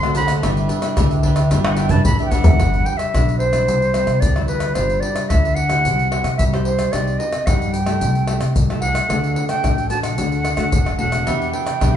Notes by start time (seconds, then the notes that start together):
Already playing: D2 A2 C6
0.03 A3 C4 F#4 A4 C5 F#5, pandeiro, tamborim, shaker
0.14 A3 C4 D4 F#4 A4 C5 F#5 B5, pandeiro, shaker
0.27 A4 C5 F#5, pandeiro, tamborim, shaker
0.42 G1 G3 D4 E4 G4 B4 E5, pandeiro, tamborim, shaker, surdo
0.57 pandeiro, shaker
0.68 D4 G4 B4 E5, pandeiro, shaker
0.82 D4 E4 B4, pandeiro, tamborim, shaker
0.96 D2 D3 D4 G4 B4 E5, pandeiro, tamborim, shaker, surdo
1.11 G4 B4 E5, pandeiro, shaker
1.23 D4 E4 G4 B4 E5, pandeiro, surdo
1.36 G4 B4 E5, pandeiro, tamborim, shaker
1.51 G1 G3 D4 G4 B4 E5, pandeiro, tamborim, shaker, surdo
1.65 D4 E4 B4 F#5, pandeiro, tamborim, shaker
1.76 D4 G4 B4 E5 G5, pandeiro, shaker
1.89 G2 D4 E4 G4 B4 E5 A5, surdo, pandeiro, shaker
2.05 A1 D3 B5, pandeiro, shaker, surdo
2.19 G4 B4 E5, pandeiro, shaker
2.25 G5
2.30 G1 D4 E4 G4 B4 E5 F#5, pandeiro, shaker, surdo
2.44 G4 B4 E5, pandeiro, shaker, surdo
2.59 G1 G3 D4 F#4 B4, pandeiro, tamborim, shaker, surdo
2.74 pandeiro, shaker
2.86 G5, pandeiro
2.97 E5, pandeiro, tamborim, shaker
3.14 B1 D3 D4 F#4 B4, pandeiro, tamborim, shaker, surdo
3.29 pandeiro, shaker
3.38 C5, pandeiro
3.53 G3 C4 E4, pandeiro, tamborim, shaker
3.68 C2 C3, pandeiro, shaker, surdo
3.82 pandeiro, shaker
3.94 G3 C4 E4, pandeiro, tamborim, shaker
4.07 C3, pandeiro, tamborim, shaker
4.20 D2 G3 D5, pandeiro, shaker, surdo
4.36 G3 C4 E4, pandeiro, tamborim, shaker
4.47 B4, pandeiro
4.60 pandeiro, tamborim, shaker
4.74 G1 G3 D4 F4 B4 C5, pandeiro, tamborim, shaker, surdo
4.90 pandeiro, shaker
5.00 D5, pandeiro
5.16 pandeiro, tamborim, shaker
5.29 D2 D3 D4 F4 B4 E5, pandeiro, tamborim, shaker, surdo
5.45 pandeiro, shaker
5.55 F#5, pandeiro
5.69 E4 G4 C5, pandeiro, tamborim, shaker
5.84 C2 C4, pandeiro, shaker, surdo
5.99 pandeiro, shaker
6.11 E4 G4 C5, pandeiro, tamborim
6.24 C3, pandeiro, tamborim, shaker
6.38 C2 G3 E5, pandeiro, shaker, surdo
6.52 E4 G4 C5, pandeiro, tamborim, shaker
6.65 C5, pandeiro
6.79 pandeiro, tamborim, shaker
6.92 C2 C4 D#4 G4 D5, pandeiro, tamborim, shaker, surdo
7.07 pandeiro, shaker
7.18 D#5, pandeiro
7.33 pandeiro, tamborim, shaker
7.46 G2 G3 D#4 G4 D5 F#5, pandeiro, tamborim, shaker, surdo
7.62 pandeiro, shaker
7.73 G5, pandeiro, shaker
7.86 A3 E4 G4, pandeiro, tamborim, shaker
8.01 C2 C3, pandeiro, shaker, surdo
8.15 pandeiro, shaker
8.27 A3 E4 G4, pandeiro, tamborim, shaker
8.40 C3, pandeiro, tamborim, shaker
8.55 C2 C3, pandeiro, shaker, surdo
8.70 A3 E4 G4, pandeiro, tamborim, shaker
8.81 F#5, pandeiro
8.95 pandeiro, tamborim, shaker
9.09 D2 D3 A3 D4 F#4, pandeiro, tamborim, shaker, surdo
9.24 pandeiro, shaker
9.36 pandeiro
9.48 A3 D4 G5, pandeiro, tamborim, shaker
9.64 A1 A3, pandeiro, tamborim, shaker, surdo
9.78 pandeiro, shaker
9.90 A3 D4 F#4 A5, pandeiro, shaker
10.03 F#5, pandeiro, tamborim, shaker
10.18 D2 D3 A3 D4 F#4, pandeiro, shaker, surdo
10.32 pandeiro, shaker
10.45 pandeiro, tamborim, shaker
10.57 D3 A3 D4 F#4, pandeiro, tamborim, shaker
10.72 F#1 A3, pandeiro, shaker, surdo
10.86 pandeiro, tamborim, shaker
10.98 E1 A3 D4 F#4 F#5, pandeiro
11.12 pandeiro, tamborim, shaker
11.26 E2 E3 B3 D4 G4 B4 E5, pandeiro, tamborim, shaker, surdo
11.42 pandeiro, shaker
11.53 D4 G4 B4 E5 G5, pandeiro
11.66 pandeiro, tamborim, shaker
11.80 B1 B2 B3 D4 G4 B4 E5, pandeiro, tamborim, shaker, surdo